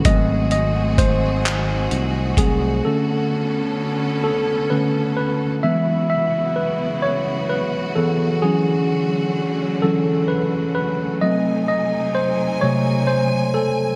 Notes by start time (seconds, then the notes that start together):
Already playing: F#4
0.04 G#1 D#3 F#3 A3 C4 G#4 D#5, kick, closed hi-hat
0.51 D#5, closed hi-hat
0.98 C5, kick, closed hi-hat
1.46 clap, closed hi-hat
1.91 C2, closed hi-hat
2.37 C2 F#3 A3 C4 G#4, kick, closed hi-hat
2.84 D3 A3 B3 C#4 A4
4.24 A4
4.70 D3 A3 C#4 B4
5.17 B4
5.62 C#3 E3 F#3 G#3 B3 E4 F#4 E5
6.10 E5
6.56 B4
7.02 C#5
7.49 B4
7.95 E3 B3 G#4 A4
8.42 D3 E3 F#3 A3 C#4 G#4
9.82 E3 F#3 C#4 A4
10.28 B4
10.75 B4
11.21 C3 F#3 A3 C4 D#4 D#5 G#5
11.68 D#5
12.15 C5
12.61 C3 F#3 A3 C#5
13.07 C5
13.54 A4